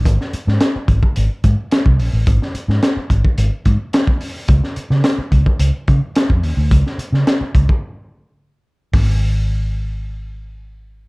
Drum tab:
HH |x-x-x-x-x-x-x-o-|x-x-x-x-x-x-x-o-|x-x-x-x-x-x-x-o-|x-x-x-x---------|
SD |-o-oo-------o---|-o-oo-------o---|-o-oo-------o---|-o-oo-----------|
BD |o-----oo--o--o--|o-----oo--o--o--|o-----oo--o--o--|o-----oo--------|

HH |o---------------|
SD |----------------|
BD |o---------------|